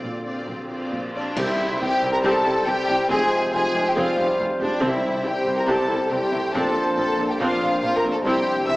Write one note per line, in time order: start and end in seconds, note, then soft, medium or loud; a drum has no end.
0.00 0.41 A#1 medium
0.00 1.30 A#2 soft
0.00 0.41 A#2 medium
0.00 1.11 D3 medium
0.00 0.24 C4 soft
0.00 1.11 C4 medium
0.00 1.33 D4 soft
0.00 0.25 F4 soft
0.00 1.35 A#4 soft
0.00 1.79 C5 soft
0.00 0.25 D5 soft
0.26 0.69 C4 soft
0.26 0.70 F4 soft
0.26 0.69 D5 soft
0.48 0.86 A#1 medium
0.48 0.85 A#2 medium
0.70 1.14 C4 soft
0.70 1.14 F4 soft
0.70 1.14 D5 soft
0.92 1.30 A#1 medium
0.92 1.30 A#2 medium
1.15 1.36 C4 soft
1.15 1.36 D4 medium
1.15 1.37 F4 medium
1.15 1.36 D5 medium
1.15 1.25 D5 medium
1.36 1.46 C2 medium
1.36 1.45 C3 medium
1.36 1.78 C3 medium
1.36 1.99 C3 medium
1.36 3.13 C3 medium
1.36 1.78 G3 medium
1.36 1.77 C4 medium
1.36 1.57 C4 medium
1.36 1.81 E4 medium
1.36 1.77 G4 medium
1.36 1.57 G4 medium
1.36 1.78 C5 medium
1.36 1.80 E5 medium
1.36 1.81 E5 medium
1.36 concert bass drum medium
1.36 crash medium
1.60 2.44 C4 medium
1.80 1.89 C2 medium
1.80 1.90 C2 medium
1.80 1.88 C3 medium
1.80 2.66 C3 medium
1.80 1.88 E3 medium
1.80 2.66 G3 medium
1.80 1.88 C4 medium
1.80 2.66 C4 medium
1.80 2.12 G4 loud
1.80 2.66 G4 medium
1.80 2.66 C5 medium
1.80 2.12 G5 medium
1.80 2.14 G5 medium
2.02 2.11 C2 medium
2.02 2.10 C2 medium
2.02 2.10 C3 medium
2.02 2.10 G3 medium
2.02 2.10 E4 medium
2.13 2.17 A#4 medium
2.13 2.18 A#5 medium
2.13 2.25 A#5 medium
2.23 2.32 C2 medium
2.23 2.31 C3 medium
2.23 2.44 C4 medium
2.23 2.44 G4 medium
2.23 2.67 A4 medium
2.23 2.66 A5 medium
2.45 2.55 C2 medium
2.45 2.53 C3 medium
2.45 2.53 G3 medium
2.45 3.30 C4 medium
2.45 2.53 E4 medium
2.66 2.76 C2 medium
2.66 2.74 C3 medium
2.66 3.09 C3 medium
2.66 2.74 E3 medium
2.66 3.10 G3 medium
2.66 2.75 C4 medium
2.66 3.09 C4 medium
2.66 3.10 G4 loud
2.66 3.10 G4 medium
2.66 3.51 C5 medium
2.66 3.09 C5 medium
2.66 3.09 G5 medium
2.66 3.11 G5 medium
2.87 2.98 C2 medium
2.87 2.95 C3 medium
2.87 2.96 G3 medium
2.87 2.96 E4 medium
3.08 3.19 F1 medium
3.08 3.17 F2 medium
3.08 3.53 C3 medium
3.08 4.84 F3 medium
3.08 3.52 G#3 medium
3.08 3.29 C4 medium
3.08 3.53 C4 medium
3.08 3.53 F4 medium
3.08 3.30 G#4 medium
3.08 3.53 G#4 loud
3.08 3.52 C5 medium
3.08 3.52 G#5 medium
3.31 4.16 C4 medium
3.52 3.62 F1 medium
3.52 3.61 F2 medium
3.52 3.96 C3 medium
3.52 3.61 G3 medium
3.52 3.96 G#3 medium
3.52 3.94 C4 medium
3.52 3.60 F4 medium
3.52 3.95 F4 medium
3.52 3.86 G#4 loud
3.52 4.38 C5 medium
3.52 3.95 C5 medium
3.52 3.85 G#5 medium
3.52 3.86 G#5 medium
3.74 3.83 F1 medium
3.74 3.84 F1 medium
3.74 3.83 F2 medium
3.74 3.82 G#3 medium
3.74 3.82 G4 medium
3.74 4.59 G4 medium
3.86 3.98 G4 medium
3.86 3.91 G5 medium
3.86 3.97 G5 medium
3.95 4.05 F1 medium
3.95 4.04 F2 medium
3.95 4.81 C3 medium
3.95 4.81 G3 medium
3.95 4.80 C4 medium
3.95 4.16 C4 medium
3.95 4.84 F4 medium
3.95 4.80 F4 medium
3.95 4.40 F4 medium
3.95 4.16 G#4 medium
3.95 4.81 C5 medium
3.95 4.39 F5 medium
4.17 4.26 F1 medium
4.17 4.27 F1 medium
4.17 4.26 F2 medium
4.17 4.26 G#3 medium
4.17 5.03 C4 medium
4.17 4.25 G4 medium
4.39 4.47 F1 medium
4.39 4.48 F1 medium
4.39 4.47 F2 medium
4.39 4.48 G3 medium
4.39 4.47 F4 medium
4.39 5.24 C5 medium
4.59 4.70 F1 medium
4.59 4.69 F1 medium
4.59 4.67 F2 medium
4.59 4.68 G#3 medium
4.59 4.82 D4 medium
4.59 4.68 G4 medium
4.59 5.46 G4 medium
4.59 4.82 D5 medium
4.80 4.91 C2 medium
4.80 4.88 C3 medium
4.80 6.55 C3 medium
4.80 5.24 C3 medium
4.80 5.43 C3 medium
4.80 5.24 G3 medium
4.80 5.02 C4 medium
4.80 5.24 C4 medium
4.80 5.26 E4 medium
4.80 5.02 G4 medium
4.80 5.24 C5 medium
4.80 5.25 E5 medium
4.80 5.26 E5 medium
5.04 5.88 C4 medium
5.23 5.34 C2 medium
5.23 5.35 C2 medium
5.23 5.31 C3 medium
5.23 6.09 C3 medium
5.23 5.33 E3 medium
5.23 6.09 G3 medium
5.23 5.33 C4 medium
5.23 6.10 C4 medium
5.23 6.10 E4 medium
5.23 5.57 G4 medium
5.23 6.11 C5 medium
5.23 6.09 C5 medium
5.23 5.57 G5 medium
5.23 5.58 G5 medium
5.45 5.55 C2 medium
5.45 5.56 C2 medium
5.45 5.53 C3 medium
5.45 5.54 G3 medium
5.45 5.54 E4 medium
5.45 6.32 G4 medium
5.58 5.69 A#4 medium
5.58 5.68 A#5 medium
5.58 5.63 A#5 medium
5.67 5.77 C2 medium
5.67 5.75 C3 medium
5.67 6.56 G3 medium
5.67 5.88 C4 medium
5.67 5.88 G4 medium
5.67 6.10 A4 medium
5.67 6.11 A5 medium
5.67 6.12 A5 medium
5.88 5.98 C2 medium
5.88 5.99 C2 medium
5.88 5.97 C3 medium
5.88 5.96 G3 medium
5.88 6.75 C4 soft
5.88 5.96 E4 medium
6.10 6.20 C2 medium
6.10 6.18 C3 medium
6.10 6.53 C3 medium
6.10 6.18 E3 medium
6.10 6.32 G3 medium
6.10 6.18 C4 medium
6.10 6.54 C4 medium
6.10 6.54 E4 medium
6.10 6.54 G4 medium
6.10 6.53 C5 medium
6.10 6.97 C5 medium
6.10 6.53 G5 medium
6.32 6.41 C2 medium
6.32 6.40 C3 medium
6.32 6.40 G3 medium
6.32 6.54 A3 medium
6.32 6.40 E4 medium
6.32 6.56 G4 medium
6.54 6.62 A#1 medium
6.54 6.63 A#1 medium
6.54 6.62 A#2 medium
6.54 8.27 A#2 medium
6.54 7.36 F3 medium
6.54 7.37 A#3 medium
6.54 6.74 C4 medium
6.54 7.38 C4 medium
6.54 6.74 D4 medium
6.54 7.40 D4 medium
6.54 6.96 A4 medium
6.54 7.38 C5 medium
6.54 6.96 A5 medium
6.96 7.05 A#1 medium
6.96 7.06 A#1 medium
6.96 7.04 A#2 medium
6.96 7.05 F3 medium
6.96 7.05 A#3 medium
6.96 7.28 A4 medium
6.96 7.81 C5 medium
6.96 7.28 A5 medium
7.18 7.26 A#1 medium
7.18 7.27 A#1 medium
7.18 7.26 A#2 medium
7.18 7.27 A#3 soft
7.18 7.26 C4 soft
7.18 8.02 D4 medium
7.29 7.40 G4 medium
7.29 7.39 G5 medium
7.29 7.34 G5 medium
7.37 7.47 A#1 medium
7.37 7.48 A#1 medium
7.37 7.48 A#2 medium
7.37 7.79 F3 medium
7.37 8.27 F3 medium
7.37 7.79 A#3 medium
7.37 7.59 C4 medium
7.37 7.82 C4 medium
7.37 7.59 D4 medium
7.37 7.81 D4 medium
7.37 7.80 F4 medium
7.37 7.81 C5 medium
7.37 7.81 F5 medium
7.37 7.80 F5 medium
7.60 7.68 A#1 medium
7.60 7.69 A#1 medium
7.60 7.69 A#2 medium
7.60 7.68 A#3 medium
7.60 7.68 C4 medium
7.60 8.45 C4 soft
7.80 7.90 A#1 medium
7.80 7.91 A#2 medium
7.80 8.23 F3 medium
7.80 7.90 F3 medium
7.80 7.90 A#3 medium
7.80 8.24 C4 medium
7.80 8.24 D4 medium
7.80 7.96 F4 loud
7.80 8.67 C5 medium
7.80 8.24 C5 medium
7.80 7.87 F5 medium
7.80 7.96 F5 medium
7.96 8.11 A#4 medium
7.96 8.11 A#5 medium
7.96 8.03 A#5 medium
8.01 8.12 A#1 medium
8.01 8.12 A#2 medium
8.01 8.23 A3 medium
8.01 8.12 A#3 medium
8.01 8.12 C4 medium
8.01 8.26 D4 medium
8.11 8.18 A4 medium
8.11 8.25 A5 medium
8.11 8.17 A5 medium
8.21 8.32 C2 medium
8.21 8.33 C2 medium
8.21 8.65 C3 medium
8.21 8.77 C3 medium
8.21 8.64 G3 medium
8.21 8.45 C4 medium
8.21 8.44 E4 medium
8.21 8.56 C5 medium
8.21 8.67 G5 medium
8.25 8.34 C3 medium
8.25 8.66 C4 medium
8.25 8.66 E4 medium
8.25 8.67 G4 loud
8.25 8.67 G5 medium
8.47 8.77 C4 medium
8.65 8.76 C2 medium
8.65 8.77 C3 medium
8.65 8.75 C3 medium
8.65 8.75 E3 medium
8.65 8.77 G3 medium
8.65 8.75 G3 medium
8.65 8.77 C4 medium
8.65 8.77 E4 medium
8.65 8.77 C5 medium
8.65 8.77 E5 loud
8.65 8.73 E6 medium
8.65 8.77 E6 medium